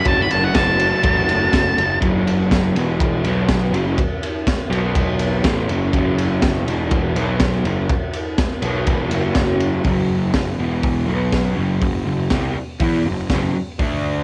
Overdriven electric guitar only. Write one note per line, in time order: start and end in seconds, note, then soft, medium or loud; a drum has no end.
0.00 0.53 F#2 loud
0.00 0.54 C#3 loud
0.00 0.54 F#3 loud
0.00 0.55 A3 loud
0.00 0.56 C#4 loud
0.00 0.56 F#4 loud
0.55 1.77 F#2 medium
0.55 1.77 C#3 medium
0.55 1.78 F#3 medium
0.55 1.78 A3 medium
0.59 1.79 C#4 medium
0.59 1.79 F#4 medium
2.02 2.75 F#2 medium
2.02 2.76 C#3 loud
2.02 2.76 F#3 loud
2.77 3.25 E2 loud
2.77 3.25 B2 loud
2.77 3.26 E3 loud
3.26 3.73 B2 medium
3.26 3.74 F#3 loud
3.26 3.75 B3 loud
3.74 3.98 F#2 loud
3.74 3.98 C#3 loud
3.74 3.99 F#3 loud
4.71 5.43 B2 loud
4.71 5.44 F#3 loud
4.71 5.45 B3 loud
5.44 5.68 A2 loud
5.44 5.69 E3 loud
5.44 5.69 A3 loud
5.70 5.92 F#2 loud
5.70 5.93 C#3 loud
5.70 5.94 F#3 loud
5.93 6.66 F#2 medium
5.93 6.67 C#3 loud
5.93 6.68 F#3 loud
6.67 7.15 E2 loud
6.67 7.15 B2 loud
6.67 7.17 E3 loud
7.16 7.64 B2 medium
7.16 7.65 F#3 loud
7.16 7.65 B3 loud
7.66 7.89 F#2 medium
7.66 7.90 C#3 loud
7.66 7.90 F#3 loud
8.63 8.87 B2 medium
8.63 8.87 F#3 loud
8.63 8.88 B3 loud
8.88 9.10 E2 loud
8.88 9.11 B2 loud
8.88 9.12 E3 loud
9.11 9.84 F#2 medium
9.11 9.85 C#3 medium
9.11 9.85 F#3 loud
9.85 10.33 F#2 medium
9.85 10.34 C#3 medium
9.85 10.35 F#3 medium
10.34 10.54 F#2 medium
10.34 10.55 C#3 medium
10.58 11.07 E2 loud
10.58 11.05 B2 medium
10.58 11.07 E3 loud
11.06 11.56 B2 medium
11.06 11.56 F#3 loud
11.06 11.57 B3 medium
11.55 11.80 F#2 medium
11.55 11.80 C#3 loud
11.55 11.81 F#3 loud
11.82 12.02 F#2 medium
11.82 12.02 C#3 medium
12.06 12.26 F#2 medium
12.06 12.27 C#3 medium
12.30 12.55 C3 medium
12.30 12.55 G3 medium
12.30 12.56 C4 loud
12.57 muted overdriven electric guitar stroke medium
12.81 13.05 E3 medium
12.81 13.06 B3 loud
12.81 13.06 E4 loud
13.08 13.27 F#2 medium
13.08 13.27 C#3 medium
13.31 13.54 F#2 medium
13.31 13.55 C#3 loud
13.31 13.56 F#3 loud
13.55 muted overdriven electric guitar stroke medium
13.80 14.23 D3 medium
13.80 14.23 A3 medium
13.80 14.23 D4 loud